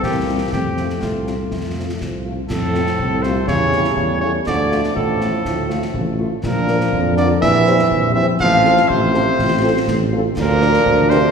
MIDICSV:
0, 0, Header, 1, 7, 480
1, 0, Start_track
1, 0, Key_signature, -1, "major"
1, 0, Tempo, 491803
1, 523, Time_signature, 2, 2, 24, 8
1, 11041, End_track
2, 0, Start_track
2, 0, Title_t, "Cornet"
2, 0, Program_c, 0, 56
2, 34, Note_on_c, 0, 67, 79
2, 485, Note_off_c, 0, 67, 0
2, 514, Note_on_c, 0, 67, 76
2, 991, Note_on_c, 0, 65, 54
2, 1006, Note_off_c, 0, 67, 0
2, 1958, Note_off_c, 0, 65, 0
2, 2432, Note_on_c, 0, 69, 97
2, 3148, Note_on_c, 0, 72, 97
2, 3163, Note_off_c, 0, 69, 0
2, 3387, Note_off_c, 0, 72, 0
2, 3393, Note_on_c, 0, 73, 104
2, 4079, Note_off_c, 0, 73, 0
2, 4107, Note_on_c, 0, 73, 91
2, 4219, Note_off_c, 0, 73, 0
2, 4362, Note_on_c, 0, 74, 98
2, 4809, Note_off_c, 0, 74, 0
2, 4838, Note_on_c, 0, 69, 86
2, 6001, Note_off_c, 0, 69, 0
2, 6281, Note_on_c, 0, 70, 103
2, 6963, Note_off_c, 0, 70, 0
2, 6999, Note_on_c, 0, 74, 101
2, 7108, Note_off_c, 0, 74, 0
2, 7237, Note_on_c, 0, 76, 117
2, 7921, Note_off_c, 0, 76, 0
2, 7954, Note_on_c, 0, 76, 111
2, 8064, Note_off_c, 0, 76, 0
2, 8201, Note_on_c, 0, 77, 124
2, 8672, Note_on_c, 0, 72, 107
2, 8687, Note_off_c, 0, 77, 0
2, 9877, Note_off_c, 0, 72, 0
2, 10113, Note_on_c, 0, 70, 120
2, 10829, Note_on_c, 0, 72, 117
2, 10844, Note_off_c, 0, 70, 0
2, 11041, Note_off_c, 0, 72, 0
2, 11041, End_track
3, 0, Start_track
3, 0, Title_t, "French horn section"
3, 0, Program_c, 1, 60
3, 282, Note_on_c, 1, 60, 50
3, 283, Note_on_c, 1, 64, 56
3, 284, Note_on_c, 1, 55, 53
3, 368, Note_off_c, 1, 60, 0
3, 370, Note_off_c, 1, 55, 0
3, 370, Note_off_c, 1, 64, 0
3, 762, Note_on_c, 1, 57, 47
3, 765, Note_on_c, 1, 65, 46
3, 766, Note_on_c, 1, 60, 49
3, 849, Note_off_c, 1, 57, 0
3, 851, Note_off_c, 1, 65, 0
3, 852, Note_off_c, 1, 60, 0
3, 1233, Note_on_c, 1, 60, 47
3, 1233, Note_on_c, 1, 65, 45
3, 1236, Note_on_c, 1, 57, 47
3, 1322, Note_off_c, 1, 60, 0
3, 1322, Note_off_c, 1, 65, 0
3, 1324, Note_off_c, 1, 57, 0
3, 1718, Note_on_c, 1, 57, 42
3, 1718, Note_on_c, 1, 60, 42
3, 1720, Note_on_c, 1, 65, 43
3, 1805, Note_off_c, 1, 60, 0
3, 1806, Note_off_c, 1, 57, 0
3, 1807, Note_off_c, 1, 65, 0
3, 2196, Note_on_c, 1, 57, 44
3, 2197, Note_on_c, 1, 60, 42
3, 2197, Note_on_c, 1, 65, 42
3, 2284, Note_off_c, 1, 57, 0
3, 2285, Note_off_c, 1, 60, 0
3, 2285, Note_off_c, 1, 65, 0
3, 2669, Note_on_c, 1, 57, 59
3, 2669, Note_on_c, 1, 60, 65
3, 2670, Note_on_c, 1, 65, 60
3, 2759, Note_off_c, 1, 57, 0
3, 2759, Note_off_c, 1, 60, 0
3, 2760, Note_off_c, 1, 65, 0
3, 3161, Note_on_c, 1, 65, 64
3, 3164, Note_on_c, 1, 57, 66
3, 3165, Note_on_c, 1, 60, 66
3, 3248, Note_off_c, 1, 65, 0
3, 3250, Note_off_c, 1, 57, 0
3, 3251, Note_off_c, 1, 60, 0
3, 3635, Note_on_c, 1, 64, 66
3, 3636, Note_on_c, 1, 57, 65
3, 3637, Note_on_c, 1, 67, 64
3, 3724, Note_off_c, 1, 57, 0
3, 3724, Note_off_c, 1, 64, 0
3, 3725, Note_off_c, 1, 67, 0
3, 4119, Note_on_c, 1, 64, 68
3, 4125, Note_on_c, 1, 57, 67
3, 4125, Note_on_c, 1, 67, 66
3, 4207, Note_off_c, 1, 64, 0
3, 4211, Note_off_c, 1, 57, 0
3, 4211, Note_off_c, 1, 67, 0
3, 4596, Note_on_c, 1, 57, 61
3, 4597, Note_on_c, 1, 65, 63
3, 4599, Note_off_c, 1, 65, 0
3, 4599, Note_on_c, 1, 65, 66
3, 4684, Note_off_c, 1, 57, 0
3, 4686, Note_off_c, 1, 65, 0
3, 5074, Note_on_c, 1, 57, 66
3, 5075, Note_on_c, 1, 65, 63
3, 5076, Note_off_c, 1, 65, 0
3, 5076, Note_on_c, 1, 65, 68
3, 5163, Note_off_c, 1, 57, 0
3, 5164, Note_off_c, 1, 65, 0
3, 5557, Note_on_c, 1, 65, 68
3, 5562, Note_off_c, 1, 65, 0
3, 5562, Note_on_c, 1, 57, 66
3, 5562, Note_on_c, 1, 65, 68
3, 5648, Note_off_c, 1, 57, 0
3, 5649, Note_off_c, 1, 65, 0
3, 6041, Note_on_c, 1, 65, 67
3, 6042, Note_on_c, 1, 57, 67
3, 6046, Note_off_c, 1, 65, 0
3, 6046, Note_on_c, 1, 65, 67
3, 6129, Note_off_c, 1, 57, 0
3, 6132, Note_off_c, 1, 65, 0
3, 6510, Note_on_c, 1, 65, 70
3, 6514, Note_on_c, 1, 62, 69
3, 6516, Note_on_c, 1, 70, 68
3, 6599, Note_off_c, 1, 65, 0
3, 6603, Note_off_c, 1, 62, 0
3, 6604, Note_off_c, 1, 70, 0
3, 6994, Note_on_c, 1, 65, 67
3, 6998, Note_on_c, 1, 62, 68
3, 7001, Note_on_c, 1, 70, 70
3, 7082, Note_off_c, 1, 65, 0
3, 7086, Note_off_c, 1, 62, 0
3, 7088, Note_off_c, 1, 70, 0
3, 7471, Note_on_c, 1, 60, 70
3, 7474, Note_on_c, 1, 67, 74
3, 7476, Note_on_c, 1, 72, 70
3, 7560, Note_off_c, 1, 60, 0
3, 7562, Note_off_c, 1, 67, 0
3, 7564, Note_off_c, 1, 72, 0
3, 7966, Note_on_c, 1, 60, 75
3, 7970, Note_on_c, 1, 72, 77
3, 7971, Note_on_c, 1, 67, 77
3, 8051, Note_off_c, 1, 60, 0
3, 8055, Note_off_c, 1, 72, 0
3, 8056, Note_off_c, 1, 67, 0
3, 8440, Note_on_c, 1, 69, 76
3, 8441, Note_on_c, 1, 65, 74
3, 8444, Note_on_c, 1, 60, 76
3, 8527, Note_off_c, 1, 69, 0
3, 8528, Note_off_c, 1, 65, 0
3, 8530, Note_off_c, 1, 60, 0
3, 8923, Note_on_c, 1, 60, 77
3, 8923, Note_on_c, 1, 65, 75
3, 8927, Note_on_c, 1, 69, 81
3, 9009, Note_off_c, 1, 60, 0
3, 9010, Note_off_c, 1, 65, 0
3, 9012, Note_off_c, 1, 69, 0
3, 9391, Note_on_c, 1, 60, 75
3, 9394, Note_on_c, 1, 69, 84
3, 9398, Note_on_c, 1, 65, 85
3, 9480, Note_off_c, 1, 60, 0
3, 9482, Note_off_c, 1, 69, 0
3, 9485, Note_off_c, 1, 65, 0
3, 9880, Note_on_c, 1, 60, 81
3, 9880, Note_on_c, 1, 65, 83
3, 9881, Note_on_c, 1, 69, 82
3, 9967, Note_off_c, 1, 60, 0
3, 9967, Note_off_c, 1, 65, 0
3, 9968, Note_off_c, 1, 69, 0
3, 10364, Note_on_c, 1, 70, 82
3, 10365, Note_on_c, 1, 62, 78
3, 10368, Note_on_c, 1, 65, 78
3, 10450, Note_off_c, 1, 70, 0
3, 10451, Note_off_c, 1, 62, 0
3, 10453, Note_off_c, 1, 65, 0
3, 10841, Note_on_c, 1, 62, 90
3, 10842, Note_on_c, 1, 65, 85
3, 10844, Note_on_c, 1, 70, 84
3, 10927, Note_off_c, 1, 62, 0
3, 10928, Note_off_c, 1, 65, 0
3, 10930, Note_off_c, 1, 70, 0
3, 11041, End_track
4, 0, Start_track
4, 0, Title_t, "Trombone section"
4, 0, Program_c, 2, 61
4, 0, Note_on_c, 2, 60, 71
4, 39, Note_on_c, 2, 52, 62
4, 509, Note_off_c, 2, 60, 0
4, 520, Note_on_c, 2, 57, 49
4, 521, Note_off_c, 2, 52, 0
4, 521, Note_on_c, 2, 60, 49
4, 923, Note_off_c, 2, 57, 0
4, 924, Note_off_c, 2, 60, 0
4, 979, Note_on_c, 2, 57, 59
4, 1437, Note_off_c, 2, 57, 0
4, 1467, Note_on_c, 2, 57, 59
4, 1921, Note_off_c, 2, 57, 0
4, 1975, Note_on_c, 2, 53, 45
4, 2321, Note_off_c, 2, 53, 0
4, 2453, Note_on_c, 2, 57, 64
4, 2459, Note_on_c, 2, 60, 66
4, 3369, Note_off_c, 2, 57, 0
4, 3373, Note_off_c, 2, 60, 0
4, 3391, Note_on_c, 2, 57, 71
4, 3396, Note_on_c, 2, 55, 71
4, 4341, Note_off_c, 2, 57, 0
4, 4353, Note_on_c, 2, 57, 68
4, 4360, Note_off_c, 2, 55, 0
4, 4362, Note_on_c, 2, 53, 76
4, 6238, Note_off_c, 2, 57, 0
4, 6243, Note_off_c, 2, 53, 0
4, 6310, Note_on_c, 2, 53, 70
4, 6311, Note_on_c, 2, 62, 68
4, 7217, Note_off_c, 2, 53, 0
4, 7217, Note_off_c, 2, 62, 0
4, 7252, Note_on_c, 2, 55, 70
4, 7253, Note_on_c, 2, 60, 74
4, 8192, Note_off_c, 2, 60, 0
4, 8194, Note_on_c, 2, 53, 86
4, 8204, Note_on_c, 2, 60, 82
4, 8207, Note_off_c, 2, 55, 0
4, 9962, Note_off_c, 2, 53, 0
4, 9962, Note_off_c, 2, 60, 0
4, 10128, Note_on_c, 2, 53, 92
4, 10132, Note_on_c, 2, 62, 91
4, 11041, Note_off_c, 2, 53, 0
4, 11041, Note_off_c, 2, 62, 0
4, 11041, End_track
5, 0, Start_track
5, 0, Title_t, "Euphonium"
5, 0, Program_c, 3, 58
5, 35, Note_on_c, 3, 58, 68
5, 498, Note_off_c, 3, 58, 0
5, 504, Note_on_c, 3, 57, 57
5, 2155, Note_off_c, 3, 57, 0
5, 2439, Note_on_c, 3, 45, 81
5, 3160, Note_on_c, 3, 48, 78
5, 3175, Note_off_c, 3, 45, 0
5, 3385, Note_off_c, 3, 48, 0
5, 3391, Note_on_c, 3, 49, 99
5, 4078, Note_off_c, 3, 49, 0
5, 4114, Note_on_c, 3, 49, 77
5, 4224, Note_off_c, 3, 49, 0
5, 4357, Note_on_c, 3, 50, 93
5, 4806, Note_off_c, 3, 50, 0
5, 4843, Note_on_c, 3, 45, 85
5, 6003, Note_off_c, 3, 45, 0
5, 6274, Note_on_c, 3, 46, 89
5, 6959, Note_off_c, 3, 46, 0
5, 6991, Note_on_c, 3, 50, 87
5, 7220, Note_off_c, 3, 50, 0
5, 7228, Note_on_c, 3, 52, 110
5, 7916, Note_off_c, 3, 52, 0
5, 7942, Note_on_c, 3, 52, 94
5, 8055, Note_off_c, 3, 52, 0
5, 8211, Note_on_c, 3, 53, 112
5, 8653, Note_off_c, 3, 53, 0
5, 8679, Note_on_c, 3, 48, 100
5, 9842, Note_off_c, 3, 48, 0
5, 10120, Note_on_c, 3, 46, 110
5, 10802, Note_off_c, 3, 46, 0
5, 10843, Note_on_c, 3, 48, 97
5, 11041, Note_off_c, 3, 48, 0
5, 11041, End_track
6, 0, Start_track
6, 0, Title_t, "Tuba"
6, 0, Program_c, 4, 58
6, 45, Note_on_c, 4, 36, 63
6, 397, Note_off_c, 4, 36, 0
6, 517, Note_on_c, 4, 41, 57
6, 920, Note_off_c, 4, 41, 0
6, 996, Note_on_c, 4, 36, 53
6, 1399, Note_off_c, 4, 36, 0
6, 1476, Note_on_c, 4, 41, 51
6, 1880, Note_off_c, 4, 41, 0
6, 1956, Note_on_c, 4, 36, 52
6, 2360, Note_off_c, 4, 36, 0
6, 2437, Note_on_c, 4, 41, 75
6, 2840, Note_off_c, 4, 41, 0
6, 2923, Note_on_c, 4, 36, 71
6, 3323, Note_off_c, 4, 36, 0
6, 3400, Note_on_c, 4, 40, 77
6, 3801, Note_off_c, 4, 40, 0
6, 3877, Note_on_c, 4, 40, 78
6, 4280, Note_off_c, 4, 40, 0
6, 4359, Note_on_c, 4, 38, 80
6, 4761, Note_off_c, 4, 38, 0
6, 4839, Note_on_c, 4, 33, 73
6, 5241, Note_off_c, 4, 33, 0
6, 5317, Note_on_c, 4, 38, 80
6, 5720, Note_off_c, 4, 38, 0
6, 5798, Note_on_c, 4, 33, 83
6, 6164, Note_off_c, 4, 33, 0
6, 6285, Note_on_c, 4, 34, 82
6, 6684, Note_off_c, 4, 34, 0
6, 6758, Note_on_c, 4, 41, 87
6, 7160, Note_off_c, 4, 41, 0
6, 7237, Note_on_c, 4, 34, 90
6, 7639, Note_off_c, 4, 34, 0
6, 7721, Note_on_c, 4, 34, 86
6, 8121, Note_off_c, 4, 34, 0
6, 8199, Note_on_c, 4, 33, 91
6, 8600, Note_off_c, 4, 33, 0
6, 8676, Note_on_c, 4, 33, 90
6, 9079, Note_off_c, 4, 33, 0
6, 9158, Note_on_c, 4, 33, 87
6, 9560, Note_off_c, 4, 33, 0
6, 9635, Note_on_c, 4, 33, 95
6, 10038, Note_off_c, 4, 33, 0
6, 10118, Note_on_c, 4, 38, 106
6, 10520, Note_off_c, 4, 38, 0
6, 10598, Note_on_c, 4, 38, 96
6, 11000, Note_off_c, 4, 38, 0
6, 11041, End_track
7, 0, Start_track
7, 0, Title_t, "Drums"
7, 31, Note_on_c, 9, 35, 74
7, 31, Note_on_c, 9, 38, 60
7, 129, Note_off_c, 9, 35, 0
7, 129, Note_off_c, 9, 38, 0
7, 515, Note_on_c, 9, 35, 75
7, 515, Note_on_c, 9, 38, 63
7, 613, Note_off_c, 9, 35, 0
7, 613, Note_off_c, 9, 38, 0
7, 752, Note_on_c, 9, 38, 47
7, 850, Note_off_c, 9, 38, 0
7, 877, Note_on_c, 9, 38, 51
7, 975, Note_off_c, 9, 38, 0
7, 995, Note_on_c, 9, 35, 70
7, 995, Note_on_c, 9, 38, 66
7, 1093, Note_off_c, 9, 35, 0
7, 1093, Note_off_c, 9, 38, 0
7, 1240, Note_on_c, 9, 38, 48
7, 1338, Note_off_c, 9, 38, 0
7, 1474, Note_on_c, 9, 35, 65
7, 1474, Note_on_c, 9, 38, 56
7, 1572, Note_off_c, 9, 35, 0
7, 1572, Note_off_c, 9, 38, 0
7, 1963, Note_on_c, 9, 35, 62
7, 1963, Note_on_c, 9, 38, 66
7, 2060, Note_off_c, 9, 35, 0
7, 2060, Note_off_c, 9, 38, 0
7, 2440, Note_on_c, 9, 35, 83
7, 2440, Note_on_c, 9, 38, 79
7, 2440, Note_on_c, 9, 49, 52
7, 2538, Note_off_c, 9, 35, 0
7, 2538, Note_off_c, 9, 38, 0
7, 2538, Note_off_c, 9, 49, 0
7, 2681, Note_on_c, 9, 38, 57
7, 2778, Note_off_c, 9, 38, 0
7, 2798, Note_on_c, 9, 38, 57
7, 2896, Note_off_c, 9, 38, 0
7, 2919, Note_on_c, 9, 35, 76
7, 3017, Note_off_c, 9, 35, 0
7, 3157, Note_on_c, 9, 38, 55
7, 3255, Note_off_c, 9, 38, 0
7, 3394, Note_on_c, 9, 35, 82
7, 3394, Note_on_c, 9, 38, 68
7, 3492, Note_off_c, 9, 35, 0
7, 3492, Note_off_c, 9, 38, 0
7, 3634, Note_on_c, 9, 38, 53
7, 3732, Note_off_c, 9, 38, 0
7, 3753, Note_on_c, 9, 38, 56
7, 3851, Note_off_c, 9, 38, 0
7, 3871, Note_on_c, 9, 35, 75
7, 3969, Note_off_c, 9, 35, 0
7, 4359, Note_on_c, 9, 35, 85
7, 4359, Note_on_c, 9, 38, 74
7, 4456, Note_off_c, 9, 35, 0
7, 4456, Note_off_c, 9, 38, 0
7, 4603, Note_on_c, 9, 38, 56
7, 4700, Note_off_c, 9, 38, 0
7, 4722, Note_on_c, 9, 38, 57
7, 4820, Note_off_c, 9, 38, 0
7, 4845, Note_on_c, 9, 35, 81
7, 4942, Note_off_c, 9, 35, 0
7, 5084, Note_on_c, 9, 38, 57
7, 5182, Note_off_c, 9, 38, 0
7, 5322, Note_on_c, 9, 35, 81
7, 5322, Note_on_c, 9, 38, 71
7, 5419, Note_off_c, 9, 35, 0
7, 5419, Note_off_c, 9, 38, 0
7, 5567, Note_on_c, 9, 38, 56
7, 5664, Note_off_c, 9, 38, 0
7, 5683, Note_on_c, 9, 38, 59
7, 5780, Note_off_c, 9, 38, 0
7, 5800, Note_on_c, 9, 35, 81
7, 5897, Note_off_c, 9, 35, 0
7, 6281, Note_on_c, 9, 35, 88
7, 6281, Note_on_c, 9, 38, 73
7, 6281, Note_on_c, 9, 49, 31
7, 6379, Note_off_c, 9, 35, 0
7, 6379, Note_off_c, 9, 38, 0
7, 6379, Note_off_c, 9, 49, 0
7, 6518, Note_on_c, 9, 38, 56
7, 6616, Note_off_c, 9, 38, 0
7, 6645, Note_on_c, 9, 38, 62
7, 6742, Note_off_c, 9, 38, 0
7, 6760, Note_on_c, 9, 35, 79
7, 6858, Note_off_c, 9, 35, 0
7, 6998, Note_on_c, 9, 38, 58
7, 7096, Note_off_c, 9, 38, 0
7, 7242, Note_on_c, 9, 35, 84
7, 7242, Note_on_c, 9, 38, 78
7, 7340, Note_off_c, 9, 35, 0
7, 7340, Note_off_c, 9, 38, 0
7, 7484, Note_on_c, 9, 38, 54
7, 7582, Note_off_c, 9, 38, 0
7, 7604, Note_on_c, 9, 38, 59
7, 7702, Note_off_c, 9, 38, 0
7, 7723, Note_on_c, 9, 35, 77
7, 7821, Note_off_c, 9, 35, 0
7, 8198, Note_on_c, 9, 35, 89
7, 8198, Note_on_c, 9, 38, 71
7, 8296, Note_off_c, 9, 35, 0
7, 8296, Note_off_c, 9, 38, 0
7, 8444, Note_on_c, 9, 38, 52
7, 8541, Note_off_c, 9, 38, 0
7, 8562, Note_on_c, 9, 38, 64
7, 8659, Note_off_c, 9, 38, 0
7, 8685, Note_on_c, 9, 35, 78
7, 8783, Note_off_c, 9, 35, 0
7, 8924, Note_on_c, 9, 38, 55
7, 9022, Note_off_c, 9, 38, 0
7, 9164, Note_on_c, 9, 35, 79
7, 9164, Note_on_c, 9, 38, 67
7, 9262, Note_off_c, 9, 35, 0
7, 9262, Note_off_c, 9, 38, 0
7, 9639, Note_on_c, 9, 35, 80
7, 9639, Note_on_c, 9, 38, 78
7, 9737, Note_off_c, 9, 35, 0
7, 9737, Note_off_c, 9, 38, 0
7, 10120, Note_on_c, 9, 35, 91
7, 10120, Note_on_c, 9, 38, 73
7, 10120, Note_on_c, 9, 49, 57
7, 10218, Note_off_c, 9, 35, 0
7, 10218, Note_off_c, 9, 38, 0
7, 10218, Note_off_c, 9, 49, 0
7, 10360, Note_on_c, 9, 38, 57
7, 10458, Note_off_c, 9, 38, 0
7, 10481, Note_on_c, 9, 38, 65
7, 10578, Note_off_c, 9, 38, 0
7, 10598, Note_on_c, 9, 35, 85
7, 10696, Note_off_c, 9, 35, 0
7, 10838, Note_on_c, 9, 38, 61
7, 10935, Note_off_c, 9, 38, 0
7, 11041, End_track
0, 0, End_of_file